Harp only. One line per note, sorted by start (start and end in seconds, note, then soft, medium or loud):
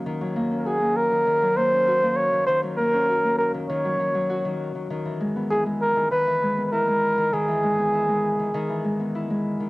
0.00 0.35 A#3 medium
0.00 0.51 C#4 medium
0.00 0.66 F#4 medium
0.06 1.11 D#3 loud
0.21 1.17 F#3 medium
0.36 0.81 A#3 medium
0.51 1.72 C#4 medium
0.66 1.87 F#4 medium
0.81 1.56 A#3 medium
1.12 1.26 D#3 medium
1.27 2.32 D#3 medium
1.42 2.38 F#3 medium
1.57 2.02 A#3 medium
1.72 2.93 C#4 medium
1.88 3.08 F#4 medium
2.03 2.78 A#3 medium
2.33 2.47 D#3 medium
2.48 3.53 D#3 medium
2.63 3.59 F#3 medium
2.78 3.24 A#3 medium
2.94 5.83 C#4 medium
3.09 4.29 F#4 medium
3.24 5.42 A#3 medium
3.54 3.68 D#3 medium
3.70 3.98 D#3 loud
3.85 4.05 F#3 medium
3.99 4.44 D#3 medium
4.15 4.50 F#3 medium
4.30 6.73 F#4 loud
4.45 4.74 D#3 medium
4.75 4.89 D#3 medium
4.90 5.95 D#3 loud
5.05 6.02 E3 medium
5.21 5.65 G#3 medium
5.36 6.57 B3 medium
5.51 6.03 E4 medium
5.66 6.02 G#3 medium
5.97 6.10 D#3 medium
6.12 7.17 D#3 loud
6.27 7.23 E3 medium
6.42 6.86 G#3 medium
6.57 7.78 B3 medium
6.72 7.24 E4 medium
6.88 7.23 G#3 medium
7.18 7.32 D#3 medium
7.33 8.38 D#3 loud
7.48 8.44 E3 medium
7.63 8.07 G#3 medium
7.79 8.99 B3 medium
7.94 8.45 E4 medium
8.09 8.44 G#3 medium
8.39 8.53 D#3 medium
8.54 9.59 D#3 loud
8.69 9.65 E3 medium
8.84 9.29 G#3 medium
9.00 9.70 B3 medium
9.15 9.66 E4 medium
9.30 9.65 G#3 medium
9.60 9.70 D#3 medium